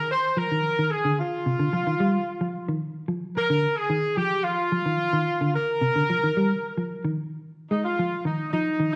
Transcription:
0.11 C5
0.37 F3 A#4
0.52 D#3
0.79 D#3
0.91 G#4
1.05 D3
1.19 F4
1.46 C3
1.59 D3
1.73 F3
1.87 D#3
2.00 G3
2.41 F3
2.69 D#3
3.08 F3
3.36 A#4, muted clean electric guitar stroke
3.50 D3
3.76 G#4
3.90 D#3
4.17 F3 G4
4.43 F4
4.72 F3
4.86 D#3
5.13 D#3
5.41 D3
5.54 A#4
5.81 C3
5.96 D3
6.10 F3
6.24 D#3
6.37 G3
6.78 F3
7.05 D#3
7.70 G#3 D#4
7.84 F4
7.99 F3
8.25 D#3 D#4
8.52 F3 D#4
8.80 D#3

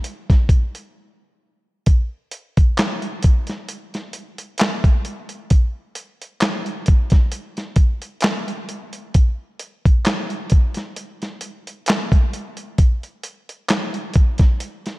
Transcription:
0.04 closed hi-hat
0.30 kick, snare, closed hi-hat
0.49 kick, closed hi-hat
0.75 closed hi-hat
1.86 kick, closed hi-hat
2.31 closed hi-hat
2.57 kick, closed hi-hat
2.78 snare, clap, closed hi-hat
3.02 closed hi-hat
3.23 kick, closed hi-hat
3.47 snare, closed hi-hat
3.69 closed hi-hat
3.94 snare, closed hi-hat
4.13 closed hi-hat
4.38 closed hi-hat
4.58 snare, clap, closed hi-hat
4.84 kick, closed hi-hat
5.05 closed hi-hat
5.29 closed hi-hat
5.50 kick, closed hi-hat
5.95 closed hi-hat
6.22 closed hi-hat
6.41 snare, clap, closed hi-hat
6.66 closed hi-hat
6.86 kick, closed hi-hat
7.10 kick, snare, closed hi-hat
7.32 closed hi-hat
7.57 snare, closed hi-hat
7.76 kick, closed hi-hat
8.02 closed hi-hat
8.21 snare, clap, closed hi-hat
8.48 closed hi-hat
8.69 closed hi-hat
8.93 closed hi-hat
9.14 kick, closed hi-hat
9.59 closed hi-hat
9.85 kick, closed hi-hat
10.05 snare, clap, closed hi-hat
10.30 closed hi-hat
10.50 kick, closed hi-hat
10.74 snare, closed hi-hat
10.96 closed hi-hat
11.22 snare, closed hi-hat
11.41 closed hi-hat
11.67 closed hi-hat
11.86 snare, clap, closed hi-hat
12.12 kick, closed hi-hat
12.33 closed hi-hat
12.57 closed hi-hat
12.78 kick, closed hi-hat
13.03 closed hi-hat
13.23 closed hi-hat
13.49 closed hi-hat
13.69 snare, clap, closed hi-hat
13.94 closed hi-hat
14.14 kick, closed hi-hat
14.38 kick, snare, closed hi-hat
14.60 closed hi-hat
14.86 snare, closed hi-hat

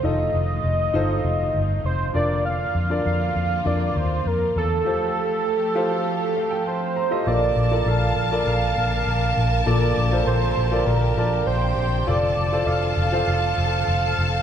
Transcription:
Already playing: D#3 A3 D#4 F4 A4 C5 D5
0.03 F1 D#4 F4 A4 D#5
0.34 F1
0.64 F1
0.94 G1 D#4 F4 A4 C5
1.24 F1
1.54 G1
1.84 F1 C5
2.14 F1 D3 A#3 D4 F4 A#4 D5
2.45 F5
2.75 F2
2.90 D4 F4 A#4 D5
3.06 F2 F5
3.36 F2
3.65 F2 D4 F4 A#4 D5
3.96 D#2 C5
4.26 F2 A#4
4.56 E2 A4
4.85 F3 A3 F4 G4 A4 C5
5.75 F4 G4 A4 C5
6.36 F5
6.51 G5
6.66 C5 A5
6.96 A#5
7.11 F4 G4 A4 D#5
7.27 A#1 A#2 D3 A#3 F4 A4 A#4 D5 A5
7.56 A#1
7.71 F4 A4 A#4 D5
7.86 A#1 F5
8.16 A#1
8.31 F4 A4 A#4 D5
8.47 A#1 F5
8.77 A#1
9.07 A#1
9.37 A#1
9.66 A#1 A#2 F4 G4 A4 A#4 D5
9.97 A#1
10.11 F4 A4 A#4 C5
10.27 A#1 C5
10.57 A#1
10.71 F4 A4 A#4 D5
10.86 A#1 A#4
11.17 A#1 F4 A#4 D5 A5
11.47 A#1 G4 C5 G5
11.77 A#1
12.06 F1 C4 F4 A4 C5 D5 A5
12.37 F1
12.52 F4 A4 C5 D5
12.66 F1 F5
12.97 F1
13.12 F4 A4 C5 F5
13.27 F1 F5
13.58 F1
13.88 F1
14.19 F1

